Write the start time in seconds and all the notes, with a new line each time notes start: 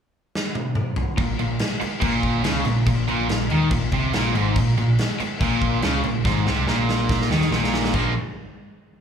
0.35 snare
0.55 high tom
0.75 mid tom
0.96 floor tom
1.17 A#1 A#2, kick, crash
1.39 A#1 A#2, crash
1.59 snare, crash
1.80 muted distorted electric guitar stroke, muted overdriven electric guitar stroke, muted picked electric bass stroke, crash
2.01 A#1 A#2, kick, crash
2.23 kick, crash
2.44 C#2 C#3, snare, crash
2.65 A#1 A#2, crash
2.86 A#1 A#2, kick, crash
3.08 A#1 A#2, crash
3.29 A#1 A#2, snare, crash
3.50 D#2 D#3, crash
3.71 A#1 A#2, kick, crash
3.92 C2 C3, kick, crash
4.13 A#1 A#2, snare, crash
4.35 G#1 G#2, crash
4.56 A#1 A#2, kick, crash
4.78 A#1 A#2, crash
4.99 snare, crash
5.20 muted overdriven electric guitar stroke, muted picked electric bass stroke, muted distorted electric guitar stroke, crash
5.40 A#1 A#2, kick, crash
5.61 kick, crash
5.82 C#2 C#3, snare, crash
6.03 A#1 A#2, crash
6.25 G#1 G#2, kick, snare
6.46 C2 C3, snare
6.67 A#1 A#2, snare
6.89 snare
7.09 kick, snare
7.21 snare
7.31 D#2 D#3, snare
7.41 snare
7.51 A#1 A#2, snare
7.64 snare
7.74 snare
7.84 snare
7.94 A#1 A#2 F3 A#3, kick, crash